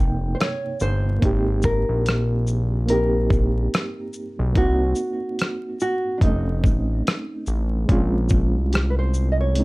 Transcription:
Already playing: analog synth bass F1, reed electric piano C3 A#3 D#4 G5, nylon-string guitar G#4
0.35 nylon-string guitar C5
0.40 nylon-string guitar C#5, cross-stick, closed hi-hat
0.80 analog synth bass G1, nylon-string guitar C5, shaker
1.19 analog synth bass G#1, reed electric piano A#3 C4, kick, closed hi-hat
1.23 reed electric piano D#4 G4
1.63 nylon-string guitar A#4, kick, shaker
1.89 analog synth bass A#1
2.06 cross-stick, closed hi-hat
2.47 shaker
2.86 reed electric piano A#3 C4, nylon-string guitar A#4, closed hi-hat
2.90 reed electric piano D#4 G4
3.30 kick, shaker
3.74 cross-stick, closed hi-hat
4.13 shaker
4.39 analog synth bass B1
4.53 analog synth bass C2, reed electric piano A#3 C4, kick, closed hi-hat
4.57 reed electric piano D#4 F#4, nylon-string guitar F#4
4.96 shaker
5.39 cross-stick, closed hi-hat
5.80 nylon-string guitar F#4, shaker
6.18 analog synth bass F1, reed electric piano G3 C4, nylon-string guitar D4, kick
6.22 reed electric piano A3 C#4 D#4, nylon-string guitar D#4, closed hi-hat
6.64 analog synth bass A1, kick, shaker
7.07 cross-stick, closed hi-hat
7.47 analog synth bass A1, shaker
7.86 analog synth bass A#1, reed electric piano G#3 C4, kick, closed hi-hat
7.90 reed electric piano C#4 F4
8.29 kick, shaker
8.56 analog synth bass C2
8.73 nylon-string guitar G4, cross-stick, closed hi-hat
8.90 nylon-string guitar B4
8.99 nylon-string guitar C5
9.14 shaker
9.32 nylon-string guitar D#5
9.40 nylon-string guitar C#5
9.53 reed electric piano G#3 C4, closed hi-hat
9.57 reed electric piano C#4 D#4

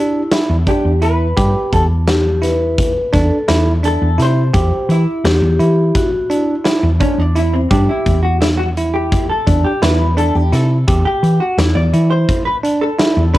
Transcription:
Already playing: tine electric piano D4, vibraphone E4
0.31 tine electric piano E4, snare, closed hi-hat
0.50 picked electric bass E2
0.66 tine electric piano D4, hollow-body jazz guitar G4, kick, closed hi-hat
0.85 picked electric bass E2
1.02 tine electric piano E4, hollow-body jazz guitar B4, closed hi-hat
1.37 picked electric bass G2, tine electric piano G4, kick, closed hi-hat
1.73 picked electric bass E2, hollow-body jazz guitar A4, kick, closed hi-hat
2.08 vibraphone G4, snare, closed hi-hat
2.42 tine electric piano E4, vibraphone B4, snare, closed hi-hat
2.78 kick, closed hi-hat
3.13 picked electric bass E2, tine electric piano D4, vibraphone A4, kick, snare, closed hi-hat
3.48 picked electric bass E2, tine electric piano E4, snare, closed hi-hat
3.83 tine electric piano D4, hollow-body jazz guitar A4, closed hi-hat
4.02 picked electric bass E2
4.18 picked electric bass C3, tine electric piano E4, snare, closed hi-hat
4.22 hollow-body jazz guitar C5
4.54 picked electric bass E2, tine electric piano G4, kick, closed hi-hat
4.89 picked electric bass E3, hollow-body jazz guitar E4, closed hi-hat
5.24 picked electric bass E2, vibraphone G4, snare, closed hi-hat
5.42 picked electric bass E2
5.59 picked electric bass E3, tine electric piano E4, closed hi-hat
5.95 vibraphone F#4, kick, snare, closed hi-hat
6.30 tine electric piano D4, vibraphone E4, closed hi-hat
6.64 tine electric piano E4, snare, closed hi-hat
6.83 picked electric bass E2
7.00 hollow-body jazz guitar C#4, tine electric piano D4, kick, closed hi-hat
7.18 picked electric bass E2, hollow-body jazz guitar D4
7.36 tine electric piano E4, hollow-body jazz guitar E4, closed hi-hat
7.54 hollow-body jazz guitar C4
7.70 picked electric bass G2, hollow-body jazz guitar D4, tine electric piano G4, kick, closed hi-hat
7.89 hollow-body jazz guitar E4
8.06 picked electric bass E2, kick, closed hi-hat
8.23 hollow-body jazz guitar F#4
8.41 hollow-body jazz guitar E4, snare, closed hi-hat
8.57 hollow-body jazz guitar F#4
8.77 tine electric piano E4, closed hi-hat
8.94 hollow-body jazz guitar G4
9.12 kick, closed hi-hat
9.30 hollow-body jazz guitar A4
9.47 picked electric bass E2, tine electric piano D4, kick, closed hi-hat
9.64 hollow-body jazz guitar G4
9.82 picked electric bass E2, tine electric piano E4, hollow-body jazz guitar B4, snare, closed hi-hat
10.17 tine electric piano D4, hollow-body jazz guitar A4, closed hi-hat
10.35 picked electric bass E2, hollow-body jazz guitar G4
10.52 picked electric bass C3, tine electric piano E4, hollow-body jazz guitar A4, snare, closed hi-hat
10.88 picked electric bass E2, tine electric piano G4, kick, closed hi-hat
11.05 hollow-body jazz guitar G4
11.23 picked electric bass E3, closed hi-hat
11.40 hollow-body jazz guitar F#4
11.58 picked electric bass E2, hollow-body jazz guitar E4, snare, closed hi-hat
11.75 picked electric bass E2, hollow-body jazz guitar D5
11.93 picked electric bass E3, tine electric piano E4, closed hi-hat
12.10 hollow-body jazz guitar C5
12.28 kick, closed hi-hat
12.45 hollow-body jazz guitar B4
12.63 tine electric piano D4, closed hi-hat
12.81 hollow-body jazz guitar A4
12.99 tine electric piano E4, snare, closed hi-hat
13.17 picked electric bass E2
13.34 tine electric piano D4, hollow-body jazz guitar B4, kick, closed hi-hat

